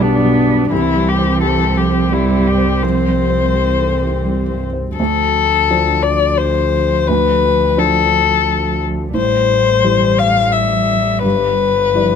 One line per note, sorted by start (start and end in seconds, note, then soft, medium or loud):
0.00 0.66 B1 soft
0.00 0.72 B1 medium
0.00 0.02 G3 soft
0.00 0.39 G3 soft
0.00 0.71 B3 medium
0.00 0.73 D4 medium
0.00 0.71 D4 soft
0.00 0.73 G4 soft
0.00 0.73 A4 soft
0.00 0.48 D5 soft
0.24 0.62 B2 soft
0.48 0.71 D5 soft
0.71 4.97 C2 soft
0.71 2.79 C2 soft
0.71 1.76 E3 medium
0.71 4.78 C4 soft
0.71 1.10 E4 medium
0.94 1.31 G3 soft
1.08 1.41 G4 soft
1.19 1.56 C5 soft
1.41 1.79 G4 soft
1.41 1.79 A4 soft
1.75 2.12 F3 medium
1.75 2.14 G4 soft
1.88 2.26 G4 soft
2.10 2.83 G3 soft
2.10 2.50 G3 soft
2.10 2.49 E4 soft
2.36 2.73 G2 soft
2.47 2.84 G4 soft
2.58 2.97 C5 soft
2.82 4.94 C2 soft
2.82 3.56 F3 soft
2.82 4.63 C5 soft
3.07 3.46 G3 soft
3.30 3.69 C5 soft
3.54 4.63 E3 soft
3.54 3.93 G4 soft
3.78 4.03 A4 soft
4.02 4.41 G4 soft
4.25 4.64 G3 soft
4.50 4.89 G2 soft
4.73 4.98 C5 soft
4.96 9.15 D2 soft
4.96 5.67 D2 soft
4.96 9.10 F3 soft
4.96 6.04 A4 medium
5.70 7.04 F3 soft
5.70 7.04 D4 soft
5.70 7.05 C5 soft
6.03 6.39 D5 medium
6.38 7.09 C5 medium
7.07 7.76 D2 soft
7.07 7.80 B4 medium
7.77 9.11 F3 soft
7.77 9.11 D4 soft
7.77 8.82 A4 medium
7.77 9.11 C5 soft
9.13 11.24 A1 medium
9.13 9.81 A2 soft
9.13 11.83 G3 medium
9.13 10.20 C5 medium
9.84 11.21 E3 soft
9.84 11.20 G3 soft
9.84 11.21 C5 soft
10.19 10.54 F5 medium
10.52 11.23 E5 medium
11.22 12.15 G1 soft
11.22 11.93 G2 soft
11.22 12.15 B4 medium
11.95 12.15 F3 soft
11.95 12.15 G3 soft
11.95 12.15 E4 soft
11.95 12.15 D5 soft